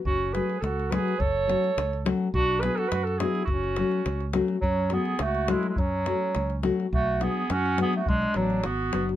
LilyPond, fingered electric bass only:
\new Staff \with { instrumentName = "Fingered electric bass" } { \clef bass \time 2/4 \key fis \minor \tempo 4 = 105 fis,,4 cis,4 | fis,,4 cis,4 | b,,4 fis,4 | fis,,4 cis,4 |
fis,4 cis,4 | fis,4 cis,4 | b,,4 fis,4 | b,,8 a,,8 gis,,8 fis,,8 | }